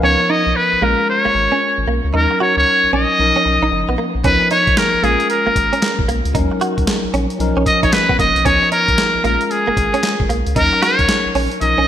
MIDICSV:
0, 0, Header, 1, 7, 480
1, 0, Start_track
1, 0, Key_signature, -6, "minor"
1, 0, Tempo, 526316
1, 30, Time_signature, 4, 2, 24, 8
1, 10832, End_track
2, 0, Start_track
2, 0, Title_t, "Muted trumpet"
2, 0, Program_c, 0, 59
2, 36, Note_on_c, 0, 73, 104
2, 278, Note_on_c, 0, 75, 96
2, 292, Note_off_c, 0, 73, 0
2, 514, Note_on_c, 0, 71, 102
2, 528, Note_off_c, 0, 75, 0
2, 760, Note_on_c, 0, 70, 89
2, 774, Note_off_c, 0, 71, 0
2, 995, Note_off_c, 0, 70, 0
2, 1000, Note_on_c, 0, 73, 99
2, 1679, Note_off_c, 0, 73, 0
2, 1967, Note_on_c, 0, 70, 93
2, 2182, Note_off_c, 0, 70, 0
2, 2202, Note_on_c, 0, 73, 83
2, 2338, Note_off_c, 0, 73, 0
2, 2350, Note_on_c, 0, 73, 106
2, 2651, Note_off_c, 0, 73, 0
2, 2680, Note_on_c, 0, 75, 112
2, 3599, Note_off_c, 0, 75, 0
2, 3877, Note_on_c, 0, 71, 110
2, 4097, Note_off_c, 0, 71, 0
2, 4115, Note_on_c, 0, 73, 101
2, 4358, Note_on_c, 0, 70, 99
2, 4372, Note_off_c, 0, 73, 0
2, 4597, Note_on_c, 0, 68, 89
2, 4610, Note_off_c, 0, 70, 0
2, 4829, Note_off_c, 0, 68, 0
2, 4835, Note_on_c, 0, 70, 86
2, 5516, Note_off_c, 0, 70, 0
2, 6993, Note_on_c, 0, 75, 104
2, 7134, Note_off_c, 0, 75, 0
2, 7145, Note_on_c, 0, 73, 99
2, 7234, Note_on_c, 0, 71, 103
2, 7247, Note_off_c, 0, 73, 0
2, 7466, Note_off_c, 0, 71, 0
2, 7471, Note_on_c, 0, 75, 106
2, 7713, Note_on_c, 0, 73, 105
2, 7727, Note_off_c, 0, 75, 0
2, 7947, Note_off_c, 0, 73, 0
2, 7953, Note_on_c, 0, 70, 103
2, 8398, Note_off_c, 0, 70, 0
2, 8437, Note_on_c, 0, 70, 87
2, 8630, Note_off_c, 0, 70, 0
2, 8630, Note_on_c, 0, 70, 59
2, 8673, Note_on_c, 0, 68, 89
2, 8687, Note_off_c, 0, 70, 0
2, 9392, Note_off_c, 0, 68, 0
2, 9634, Note_on_c, 0, 70, 108
2, 9875, Note_on_c, 0, 73, 104
2, 9889, Note_off_c, 0, 70, 0
2, 10352, Note_off_c, 0, 73, 0
2, 10594, Note_on_c, 0, 75, 111
2, 10832, Note_off_c, 0, 75, 0
2, 10832, End_track
3, 0, Start_track
3, 0, Title_t, "Tine electric piano"
3, 0, Program_c, 1, 4
3, 0, Control_c, 1, 64, 127
3, 0, Note_on_c, 1, 71, 57
3, 0, Note_on_c, 1, 77, 68
3, 25, Note_on_c, 1, 53, 59
3, 30, Note_on_c, 1, 59, 55
3, 32, Note_on_c, 1, 63, 56
3, 36, Note_on_c, 1, 70, 66
3, 42, Control_c, 1, 64, 0
3, 170, Note_off_c, 1, 77, 0
3, 173, Note_off_c, 1, 71, 0
3, 224, Control_c, 1, 64, 127
3, 740, Note_on_c, 1, 56, 67
3, 747, Note_off_c, 1, 53, 0
3, 747, Note_on_c, 1, 61, 58
3, 750, Note_off_c, 1, 59, 0
3, 750, Note_off_c, 1, 70, 0
3, 751, Note_off_c, 1, 63, 0
3, 756, Note_on_c, 1, 65, 58
3, 761, Note_on_c, 1, 70, 69
3, 763, Control_c, 1, 64, 0
3, 943, Control_c, 1, 64, 127
3, 1921, Note_off_c, 1, 56, 0
3, 1925, Note_off_c, 1, 61, 0
3, 1929, Note_off_c, 1, 65, 0
3, 1932, Note_off_c, 1, 70, 0
3, 1940, Note_on_c, 1, 54, 64
3, 1949, Note_on_c, 1, 61, 58
3, 1957, Note_on_c, 1, 63, 57
3, 1961, Control_c, 1, 64, 0
3, 1963, Note_on_c, 1, 70, 73
3, 2122, Control_c, 1, 64, 127
3, 2886, Note_off_c, 1, 54, 0
3, 2890, Note_off_c, 1, 61, 0
3, 2894, Note_off_c, 1, 63, 0
3, 2898, Note_off_c, 1, 70, 0
3, 2902, Note_on_c, 1, 53, 61
3, 2908, Note_on_c, 1, 61, 60
3, 2916, Note_on_c, 1, 63, 58
3, 2920, Control_c, 1, 64, 0
3, 2923, Note_on_c, 1, 70, 68
3, 3063, Control_c, 1, 64, 127
3, 3847, Note_off_c, 1, 53, 0
3, 3850, Note_off_c, 1, 61, 0
3, 3854, Note_off_c, 1, 63, 0
3, 3857, Note_off_c, 1, 70, 0
3, 3867, Note_on_c, 1, 53, 64
3, 3870, Note_on_c, 1, 59, 55
3, 3874, Note_on_c, 1, 63, 58
3, 3878, Note_on_c, 1, 70, 68
3, 3882, Control_c, 1, 64, 0
3, 4051, Control_c, 1, 64, 127
3, 4578, Note_on_c, 1, 56, 61
3, 4585, Note_on_c, 1, 61, 58
3, 4589, Note_off_c, 1, 53, 0
3, 4590, Note_off_c, 1, 59, 0
3, 4592, Note_off_c, 1, 63, 0
3, 4593, Note_on_c, 1, 65, 61
3, 4594, Note_off_c, 1, 70, 0
3, 4600, Note_on_c, 1, 68, 54
3, 4604, Control_c, 1, 64, 0
3, 4659, Note_on_c, 1, 70, 66
3, 4668, Note_off_c, 1, 68, 0
3, 4741, Control_c, 1, 64, 127
3, 5760, Note_off_c, 1, 56, 0
3, 5763, Note_off_c, 1, 61, 0
3, 5768, Note_off_c, 1, 65, 0
3, 5779, Note_on_c, 1, 54, 74
3, 5785, Note_on_c, 1, 61, 70
3, 5788, Note_off_c, 1, 70, 0
3, 5792, Note_on_c, 1, 63, 67
3, 5799, Note_on_c, 1, 70, 83
3, 5804, Control_c, 1, 64, 0
3, 5985, Control_c, 1, 64, 127
3, 6725, Note_off_c, 1, 54, 0
3, 6728, Note_off_c, 1, 61, 0
3, 6732, Note_off_c, 1, 63, 0
3, 6735, Note_off_c, 1, 70, 0
3, 6737, Note_on_c, 1, 53, 78
3, 6745, Note_on_c, 1, 61, 72
3, 6752, Note_on_c, 1, 63, 71
3, 6759, Note_on_c, 1, 70, 78
3, 6760, Control_c, 1, 64, 0
3, 6915, Control_c, 1, 64, 127
3, 7684, Note_off_c, 1, 53, 0
3, 7688, Note_off_c, 1, 61, 0
3, 7692, Note_off_c, 1, 63, 0
3, 7695, Note_off_c, 1, 70, 0
3, 7704, Note_on_c, 1, 53, 63
3, 7707, Note_on_c, 1, 59, 54
3, 7713, Note_on_c, 1, 63, 60
3, 7716, Note_on_c, 1, 70, 76
3, 7721, Control_c, 1, 64, 0
3, 7898, Control_c, 1, 64, 127
3, 8419, Note_on_c, 1, 56, 62
3, 8426, Note_on_c, 1, 61, 58
3, 8427, Note_off_c, 1, 53, 0
3, 8429, Note_off_c, 1, 59, 0
3, 8430, Note_off_c, 1, 70, 0
3, 8431, Note_off_c, 1, 63, 0
3, 8434, Note_on_c, 1, 65, 57
3, 8441, Note_on_c, 1, 70, 65
3, 8443, Control_c, 1, 64, 0
3, 8600, Control_c, 1, 64, 127
3, 9600, Note_off_c, 1, 56, 0
3, 9604, Note_off_c, 1, 61, 0
3, 9608, Note_off_c, 1, 65, 0
3, 9612, Note_off_c, 1, 70, 0
3, 9622, Note_on_c, 1, 54, 58
3, 9629, Note_on_c, 1, 61, 61
3, 9636, Note_on_c, 1, 63, 55
3, 9641, Control_c, 1, 64, 0
3, 9644, Note_on_c, 1, 70, 73
3, 9797, Control_c, 1, 64, 127
3, 10567, Note_off_c, 1, 54, 0
3, 10570, Note_off_c, 1, 61, 0
3, 10574, Note_off_c, 1, 63, 0
3, 10578, Note_off_c, 1, 70, 0
3, 10580, Note_on_c, 1, 53, 64
3, 10587, Note_on_c, 1, 61, 58
3, 10595, Note_on_c, 1, 63, 57
3, 10600, Control_c, 1, 64, 0
3, 10602, Note_on_c, 1, 70, 71
3, 10774, Control_c, 1, 64, 127
3, 10832, Note_off_c, 1, 53, 0
3, 10832, Note_off_c, 1, 61, 0
3, 10832, Note_off_c, 1, 63, 0
3, 10832, Note_off_c, 1, 70, 0
3, 10832, End_track
4, 0, Start_track
4, 0, Title_t, "Clean electric guitar"
4, 0, Program_c, 2, 27
4, 32, Note_on_c, 2, 61, 89
4, 139, Note_off_c, 2, 61, 0
4, 272, Note_on_c, 2, 63, 74
4, 379, Note_off_c, 2, 63, 0
4, 751, Note_on_c, 2, 58, 81
4, 859, Note_off_c, 2, 58, 0
4, 1142, Note_on_c, 2, 58, 74
4, 1204, Note_off_c, 2, 58, 0
4, 1385, Note_on_c, 2, 61, 79
4, 1446, Note_off_c, 2, 61, 0
4, 1711, Note_on_c, 2, 58, 66
4, 1819, Note_off_c, 2, 58, 0
4, 1949, Note_on_c, 2, 63, 74
4, 2057, Note_off_c, 2, 63, 0
4, 2192, Note_on_c, 2, 66, 73
4, 2300, Note_off_c, 2, 66, 0
4, 2674, Note_on_c, 2, 61, 84
4, 2781, Note_off_c, 2, 61, 0
4, 3066, Note_on_c, 2, 61, 72
4, 3127, Note_off_c, 2, 61, 0
4, 3307, Note_on_c, 2, 63, 86
4, 3367, Note_off_c, 2, 63, 0
4, 3545, Note_on_c, 2, 59, 72
4, 3606, Note_off_c, 2, 59, 0
4, 3632, Note_on_c, 2, 58, 76
4, 3739, Note_off_c, 2, 58, 0
4, 3873, Note_on_c, 2, 61, 85
4, 3980, Note_off_c, 2, 61, 0
4, 4114, Note_on_c, 2, 63, 73
4, 4221, Note_off_c, 2, 63, 0
4, 4593, Note_on_c, 2, 58, 84
4, 4700, Note_off_c, 2, 58, 0
4, 4984, Note_on_c, 2, 58, 73
4, 5045, Note_off_c, 2, 58, 0
4, 5223, Note_on_c, 2, 61, 82
4, 5285, Note_off_c, 2, 61, 0
4, 5549, Note_on_c, 2, 58, 73
4, 5658, Note_off_c, 2, 58, 0
4, 5789, Note_on_c, 2, 63, 71
4, 5897, Note_off_c, 2, 63, 0
4, 6030, Note_on_c, 2, 66, 78
4, 6138, Note_off_c, 2, 66, 0
4, 6510, Note_on_c, 2, 61, 81
4, 6618, Note_off_c, 2, 61, 0
4, 6902, Note_on_c, 2, 61, 79
4, 6964, Note_off_c, 2, 61, 0
4, 7141, Note_on_c, 2, 63, 84
4, 7204, Note_off_c, 2, 63, 0
4, 7382, Note_on_c, 2, 59, 77
4, 7444, Note_off_c, 2, 59, 0
4, 7468, Note_on_c, 2, 58, 77
4, 7577, Note_off_c, 2, 58, 0
4, 7708, Note_on_c, 2, 61, 85
4, 7817, Note_off_c, 2, 61, 0
4, 7951, Note_on_c, 2, 63, 75
4, 8059, Note_off_c, 2, 63, 0
4, 8429, Note_on_c, 2, 58, 88
4, 8537, Note_off_c, 2, 58, 0
4, 8823, Note_on_c, 2, 58, 76
4, 8885, Note_off_c, 2, 58, 0
4, 9063, Note_on_c, 2, 61, 82
4, 9125, Note_off_c, 2, 61, 0
4, 9389, Note_on_c, 2, 58, 74
4, 9497, Note_off_c, 2, 58, 0
4, 9631, Note_on_c, 2, 63, 69
4, 9739, Note_off_c, 2, 63, 0
4, 9872, Note_on_c, 2, 66, 78
4, 9979, Note_off_c, 2, 66, 0
4, 10354, Note_on_c, 2, 61, 80
4, 10461, Note_off_c, 2, 61, 0
4, 10744, Note_on_c, 2, 61, 75
4, 10805, Note_off_c, 2, 61, 0
4, 10832, End_track
5, 0, Start_track
5, 0, Title_t, "Analog synth bass"
5, 0, Program_c, 3, 38
5, 30, Note_on_c, 3, 37, 94
5, 147, Note_off_c, 3, 37, 0
5, 424, Note_on_c, 3, 35, 90
5, 490, Note_off_c, 3, 35, 0
5, 663, Note_on_c, 3, 34, 45
5, 698, Note_off_c, 3, 34, 0
5, 748, Note_on_c, 3, 34, 102
5, 866, Note_off_c, 3, 34, 0
5, 1143, Note_on_c, 3, 32, 44
5, 1178, Note_off_c, 3, 32, 0
5, 1229, Note_on_c, 3, 32, 86
5, 1346, Note_off_c, 3, 32, 0
5, 1624, Note_on_c, 3, 32, 94
5, 1691, Note_off_c, 3, 32, 0
5, 1709, Note_on_c, 3, 35, 96
5, 1826, Note_off_c, 3, 35, 0
5, 1864, Note_on_c, 3, 37, 95
5, 1930, Note_off_c, 3, 37, 0
5, 1952, Note_on_c, 3, 39, 106
5, 2068, Note_off_c, 3, 39, 0
5, 2344, Note_on_c, 3, 37, 99
5, 2411, Note_off_c, 3, 37, 0
5, 2585, Note_on_c, 3, 34, 44
5, 2619, Note_off_c, 3, 34, 0
5, 2672, Note_on_c, 3, 34, 82
5, 2788, Note_off_c, 3, 34, 0
5, 2914, Note_on_c, 3, 35, 101
5, 3029, Note_off_c, 3, 35, 0
5, 3152, Note_on_c, 3, 35, 79
5, 3268, Note_off_c, 3, 35, 0
5, 3303, Note_on_c, 3, 34, 86
5, 3370, Note_off_c, 3, 34, 0
5, 3391, Note_on_c, 3, 30, 93
5, 3507, Note_off_c, 3, 30, 0
5, 3544, Note_on_c, 3, 34, 88
5, 3611, Note_off_c, 3, 34, 0
5, 3784, Note_on_c, 3, 34, 104
5, 3851, Note_off_c, 3, 34, 0
5, 3870, Note_on_c, 3, 37, 113
5, 3987, Note_off_c, 3, 37, 0
5, 4262, Note_on_c, 3, 35, 87
5, 4329, Note_off_c, 3, 35, 0
5, 4503, Note_on_c, 3, 34, 40
5, 4538, Note_off_c, 3, 34, 0
5, 4589, Note_on_c, 3, 34, 98
5, 4706, Note_off_c, 3, 34, 0
5, 4983, Note_on_c, 3, 32, 47
5, 5018, Note_off_c, 3, 32, 0
5, 5069, Note_on_c, 3, 32, 88
5, 5186, Note_off_c, 3, 32, 0
5, 5462, Note_on_c, 3, 32, 86
5, 5529, Note_off_c, 3, 32, 0
5, 5548, Note_on_c, 3, 35, 86
5, 5666, Note_off_c, 3, 35, 0
5, 5701, Note_on_c, 3, 37, 97
5, 5768, Note_off_c, 3, 37, 0
5, 5789, Note_on_c, 3, 39, 107
5, 5906, Note_off_c, 3, 39, 0
5, 6182, Note_on_c, 3, 37, 86
5, 6249, Note_off_c, 3, 37, 0
5, 6420, Note_on_c, 3, 34, 44
5, 6456, Note_off_c, 3, 34, 0
5, 6509, Note_on_c, 3, 34, 92
5, 6626, Note_off_c, 3, 34, 0
5, 6747, Note_on_c, 3, 35, 97
5, 6865, Note_off_c, 3, 35, 0
5, 6898, Note_on_c, 3, 35, 97
5, 6967, Note_off_c, 3, 35, 0
5, 7143, Note_on_c, 3, 34, 91
5, 7210, Note_off_c, 3, 34, 0
5, 7470, Note_on_c, 3, 30, 95
5, 7586, Note_off_c, 3, 30, 0
5, 7621, Note_on_c, 3, 35, 90
5, 7688, Note_off_c, 3, 35, 0
5, 7710, Note_on_c, 3, 37, 106
5, 7827, Note_off_c, 3, 37, 0
5, 8102, Note_on_c, 3, 35, 96
5, 8169, Note_off_c, 3, 35, 0
5, 8341, Note_on_c, 3, 34, 44
5, 8376, Note_off_c, 3, 34, 0
5, 8430, Note_on_c, 3, 34, 95
5, 8547, Note_off_c, 3, 34, 0
5, 8824, Note_on_c, 3, 32, 49
5, 8859, Note_off_c, 3, 32, 0
5, 8909, Note_on_c, 3, 32, 94
5, 9026, Note_off_c, 3, 32, 0
5, 9302, Note_on_c, 3, 32, 96
5, 9369, Note_off_c, 3, 32, 0
5, 9390, Note_on_c, 3, 35, 90
5, 9507, Note_off_c, 3, 35, 0
5, 9546, Note_on_c, 3, 37, 98
5, 9612, Note_off_c, 3, 37, 0
5, 9631, Note_on_c, 3, 39, 100
5, 9748, Note_off_c, 3, 39, 0
5, 10024, Note_on_c, 3, 37, 96
5, 10091, Note_off_c, 3, 37, 0
5, 10265, Note_on_c, 3, 34, 45
5, 10300, Note_off_c, 3, 34, 0
5, 10351, Note_on_c, 3, 34, 84
5, 10467, Note_off_c, 3, 34, 0
5, 10593, Note_on_c, 3, 35, 100
5, 10709, Note_off_c, 3, 35, 0
5, 10744, Note_on_c, 3, 35, 84
5, 10811, Note_off_c, 3, 35, 0
5, 10832, End_track
6, 0, Start_track
6, 0, Title_t, "Muted clean electric guitar strokes"
6, 183, Note_on_c, 9, 29, 47
6, 274, Note_off_c, 9, 29, 0
6, 1231, Note_on_c, 9, 29, 42
6, 1322, Note_off_c, 9, 29, 0
6, 2104, Note_on_c, 9, 29, 45
6, 2195, Note_off_c, 9, 29, 0
6, 3151, Note_on_c, 9, 29, 44
6, 3242, Note_off_c, 9, 29, 0
6, 3393, Note_on_c, 9, 29, 42
6, 3484, Note_off_c, 9, 29, 0
6, 4026, Note_on_c, 9, 29, 43
6, 4118, Note_off_c, 9, 29, 0
6, 5073, Note_on_c, 9, 29, 45
6, 5164, Note_off_c, 9, 29, 0
6, 5942, Note_on_c, 9, 29, 42
6, 6033, Note_off_c, 9, 29, 0
6, 6988, Note_on_c, 9, 29, 42
6, 7080, Note_off_c, 9, 29, 0
6, 7230, Note_on_c, 9, 29, 43
6, 7321, Note_off_c, 9, 29, 0
6, 7864, Note_on_c, 9, 29, 45
6, 7955, Note_off_c, 9, 29, 0
6, 8911, Note_on_c, 9, 29, 42
6, 9002, Note_off_c, 9, 29, 0
6, 9784, Note_on_c, 9, 29, 44
6, 9876, Note_off_c, 9, 29, 0
6, 10832, End_track
7, 0, Start_track
7, 0, Title_t, "Drums"
7, 3869, Note_on_c, 9, 42, 73
7, 3870, Note_on_c, 9, 36, 114
7, 3960, Note_off_c, 9, 42, 0
7, 3961, Note_off_c, 9, 36, 0
7, 4110, Note_on_c, 9, 42, 68
7, 4201, Note_off_c, 9, 42, 0
7, 4262, Note_on_c, 9, 42, 41
7, 4263, Note_on_c, 9, 36, 94
7, 4351, Note_off_c, 9, 42, 0
7, 4351, Note_on_c, 9, 38, 98
7, 4351, Note_on_c, 9, 42, 70
7, 4354, Note_off_c, 9, 36, 0
7, 4357, Note_on_c, 9, 39, 79
7, 4442, Note_off_c, 9, 38, 0
7, 4442, Note_off_c, 9, 42, 0
7, 4448, Note_off_c, 9, 39, 0
7, 4593, Note_on_c, 9, 42, 61
7, 4684, Note_off_c, 9, 42, 0
7, 4742, Note_on_c, 9, 42, 50
7, 4831, Note_off_c, 9, 42, 0
7, 4831, Note_on_c, 9, 42, 68
7, 4922, Note_off_c, 9, 42, 0
7, 5068, Note_on_c, 9, 36, 83
7, 5071, Note_on_c, 9, 42, 84
7, 5159, Note_off_c, 9, 36, 0
7, 5163, Note_off_c, 9, 42, 0
7, 5225, Note_on_c, 9, 42, 59
7, 5312, Note_off_c, 9, 42, 0
7, 5312, Note_on_c, 9, 38, 104
7, 5312, Note_on_c, 9, 42, 71
7, 5317, Note_on_c, 9, 39, 83
7, 5403, Note_off_c, 9, 38, 0
7, 5403, Note_off_c, 9, 42, 0
7, 5409, Note_off_c, 9, 39, 0
7, 5462, Note_on_c, 9, 36, 112
7, 5552, Note_on_c, 9, 42, 76
7, 5553, Note_off_c, 9, 36, 0
7, 5643, Note_off_c, 9, 42, 0
7, 5704, Note_on_c, 9, 42, 61
7, 5790, Note_on_c, 9, 36, 122
7, 5791, Note_off_c, 9, 42, 0
7, 5791, Note_on_c, 9, 42, 77
7, 5881, Note_off_c, 9, 36, 0
7, 5882, Note_off_c, 9, 42, 0
7, 6031, Note_on_c, 9, 42, 73
7, 6122, Note_off_c, 9, 42, 0
7, 6182, Note_on_c, 9, 36, 85
7, 6182, Note_on_c, 9, 42, 45
7, 6269, Note_off_c, 9, 42, 0
7, 6269, Note_on_c, 9, 38, 106
7, 6269, Note_on_c, 9, 42, 77
7, 6273, Note_off_c, 9, 36, 0
7, 6275, Note_on_c, 9, 39, 74
7, 6360, Note_off_c, 9, 38, 0
7, 6360, Note_off_c, 9, 42, 0
7, 6366, Note_off_c, 9, 39, 0
7, 6511, Note_on_c, 9, 42, 55
7, 6602, Note_off_c, 9, 42, 0
7, 6660, Note_on_c, 9, 42, 50
7, 6750, Note_off_c, 9, 42, 0
7, 6750, Note_on_c, 9, 42, 67
7, 6841, Note_off_c, 9, 42, 0
7, 6987, Note_on_c, 9, 36, 83
7, 6990, Note_on_c, 9, 42, 82
7, 7079, Note_off_c, 9, 36, 0
7, 7081, Note_off_c, 9, 42, 0
7, 7142, Note_on_c, 9, 36, 95
7, 7143, Note_on_c, 9, 42, 56
7, 7230, Note_off_c, 9, 42, 0
7, 7230, Note_on_c, 9, 38, 115
7, 7230, Note_on_c, 9, 42, 68
7, 7234, Note_off_c, 9, 36, 0
7, 7235, Note_on_c, 9, 39, 83
7, 7321, Note_off_c, 9, 38, 0
7, 7321, Note_off_c, 9, 42, 0
7, 7327, Note_off_c, 9, 39, 0
7, 7382, Note_on_c, 9, 36, 103
7, 7469, Note_off_c, 9, 36, 0
7, 7469, Note_on_c, 9, 36, 96
7, 7474, Note_on_c, 9, 42, 77
7, 7560, Note_off_c, 9, 36, 0
7, 7565, Note_off_c, 9, 42, 0
7, 7626, Note_on_c, 9, 42, 59
7, 7711, Note_on_c, 9, 36, 118
7, 7712, Note_off_c, 9, 42, 0
7, 7712, Note_on_c, 9, 42, 81
7, 7802, Note_off_c, 9, 36, 0
7, 7804, Note_off_c, 9, 42, 0
7, 7951, Note_on_c, 9, 42, 69
7, 8042, Note_off_c, 9, 42, 0
7, 8102, Note_on_c, 9, 36, 85
7, 8102, Note_on_c, 9, 42, 43
7, 8190, Note_off_c, 9, 42, 0
7, 8190, Note_on_c, 9, 38, 92
7, 8190, Note_on_c, 9, 42, 78
7, 8193, Note_off_c, 9, 36, 0
7, 8196, Note_on_c, 9, 39, 80
7, 8281, Note_off_c, 9, 38, 0
7, 8281, Note_off_c, 9, 42, 0
7, 8287, Note_off_c, 9, 39, 0
7, 8432, Note_on_c, 9, 42, 60
7, 8523, Note_off_c, 9, 42, 0
7, 8580, Note_on_c, 9, 42, 49
7, 8671, Note_off_c, 9, 42, 0
7, 8671, Note_on_c, 9, 42, 64
7, 8763, Note_off_c, 9, 42, 0
7, 8909, Note_on_c, 9, 36, 82
7, 8912, Note_on_c, 9, 42, 76
7, 9000, Note_off_c, 9, 36, 0
7, 9003, Note_off_c, 9, 42, 0
7, 9065, Note_on_c, 9, 42, 57
7, 9150, Note_off_c, 9, 42, 0
7, 9150, Note_on_c, 9, 38, 101
7, 9150, Note_on_c, 9, 42, 70
7, 9156, Note_on_c, 9, 39, 90
7, 9241, Note_off_c, 9, 38, 0
7, 9242, Note_off_c, 9, 42, 0
7, 9247, Note_off_c, 9, 39, 0
7, 9302, Note_on_c, 9, 36, 102
7, 9393, Note_off_c, 9, 36, 0
7, 9393, Note_on_c, 9, 42, 74
7, 9484, Note_off_c, 9, 42, 0
7, 9544, Note_on_c, 9, 42, 59
7, 9631, Note_off_c, 9, 42, 0
7, 9631, Note_on_c, 9, 36, 122
7, 9631, Note_on_c, 9, 42, 82
7, 9723, Note_off_c, 9, 36, 0
7, 9723, Note_off_c, 9, 42, 0
7, 9873, Note_on_c, 9, 38, 68
7, 9873, Note_on_c, 9, 42, 69
7, 9964, Note_off_c, 9, 38, 0
7, 9964, Note_off_c, 9, 42, 0
7, 10022, Note_on_c, 9, 42, 44
7, 10024, Note_on_c, 9, 36, 91
7, 10111, Note_off_c, 9, 42, 0
7, 10111, Note_on_c, 9, 38, 101
7, 10111, Note_on_c, 9, 42, 74
7, 10115, Note_off_c, 9, 36, 0
7, 10117, Note_on_c, 9, 39, 85
7, 10202, Note_off_c, 9, 38, 0
7, 10202, Note_off_c, 9, 42, 0
7, 10208, Note_off_c, 9, 39, 0
7, 10352, Note_on_c, 9, 46, 63
7, 10443, Note_off_c, 9, 46, 0
7, 10501, Note_on_c, 9, 42, 49
7, 10592, Note_off_c, 9, 42, 0
7, 10592, Note_on_c, 9, 42, 68
7, 10683, Note_off_c, 9, 42, 0
7, 10832, End_track
0, 0, End_of_file